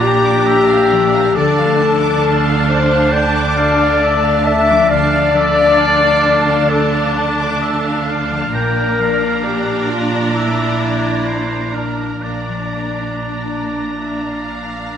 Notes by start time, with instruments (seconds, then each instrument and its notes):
Already playing: double bass section A#1, cello section A#2, harp A#2 F3 A#3 D4 F4 D6, viola section D4, oboe D5, violin section A#5
0.01 clarinet G4, french horn section G4, harp D5, violin section A#5
0.24 harp F4, violin section D6
0.46 harp D5, oboe E5, violin section A#5
0.67 harp D4, violin section F5
0.90 harp F3, violin section D5
1.13 harp A#3, violin section F5
1.35 double bass section D2, cello section D3, harp D3, viola section D4, french horn section A4, clarinet A4, oboe D5, violin section D5 A5
1.57 harp F3, violin section F5
1.79 harp D4, violin section A5
2.01 harp D5, violin section D6
2.23 oboe F5, violin section A5
2.46 harp D5, violin section F5
2.68 french horn section C5, clarinet C5, violin section D5, harp D6
2.91 violin section F5
3.12 french horn section D5, clarinet D5, oboe G5, violin section A5, harp D6
3.35 violin section D6
3.57 oboe F5, violin section A5, harp D6
3.79 violin section F5
4.01 violin section D5, oboe E5
4.24 harp D5, violin section F5
4.44 harp D4, oboe D5, clarinet E5, french horn section E5, violin section A5
4.67 harp F3, violin section D6
4.89 double bass section D2, cello section D3, harp D3, viola section D4, clarinet D5, french horn section D5, oboe F5, violin section A5
5.11 harp D4, violin section F5
5.32 harp F3, violin section D5, oboe E5
5.56 violin section F5
5.77 oboe F5, violin section A5
6.01 violin section D6
6.24 violin section A5
6.48 violin section F5
6.69 clarinet A4, french horn section A4, oboe D5, violin section D5, harp D6
6.93 violin section F5
7.15 violin section A5, harp D6
7.38 harp D5, violin section D6
7.61 oboe E5, violin section A5
7.84 harp D5, violin section F5
8.07 harp D4, violin section D5, oboe F5
8.30 harp F3, violin section F5
8.52 double bass section A#1, harp A#2, cello section A#2, viola section D4, clarinet A#4, french horn section A#4, violin section D5 A#5, oboe G5
8.75 harp A#3
8.99 harp F3, oboe F5
9.21 harp D4
9.43 clarinet G4, french horn section G4, harp D5
9.89 clarinet F4, french horn section F4, harp D5
10.34 clarinet E4, french horn section E4, oboe E5
10.57 harp D6
10.79 oboe D5, harp D5
11.26 oboe C5, harp D5
11.50 harp D4
11.74 harp F3, clarinet D4, french horn section D4, oboe A#4
11.99 harp A#3
12.23 double bass section A#1, cello section A#2, harp A#2, viola section D4, clarinet D4, french horn section D4, oboe D5, violin section D5 A#5
12.49 harp F3
12.74 harp A#3
12.99 harp D4
13.23 violin section D5, harp D5
13.74 harp D5
13.97 violin section E5, harp D6
14.21 harp D5, violin section F5
14.47 harp D6
14.72 harp D5